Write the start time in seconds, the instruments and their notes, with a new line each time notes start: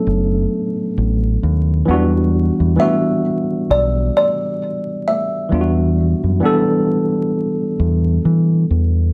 Already playing: tine electric piano F#3 A3 B3 C#4 D4 F#4 A4, kalimba D5
0.07 fingered electric bass F#1
0.98 fingered electric bass A1
1.43 fingered electric bass D#2
1.85 fingered electric bass E2, tine electric piano E3 F#3 B3 D4
1.91 tine electric piano G3 F#4
2.60 fingered electric bass E2
2.76 tine electric piano E3 G3 B3 D4, kalimba E5
2.82 tine electric piano F#4
3.70 fingered electric bass B1, kalimba D5
4.17 kalimba D5
5.08 kalimba E5
5.49 fingered electric bass E2, tine electric piano E3 G3 B3 D4
5.54 tine electric piano F4
5.61 tine electric piano F#4
6.24 fingered electric bass F#2
6.40 tine electric piano E3 G3 B3 D4
6.45 tine electric piano A4
7.80 fingered electric bass E2
8.25 fingered electric bass E3
8.71 fingered electric bass E2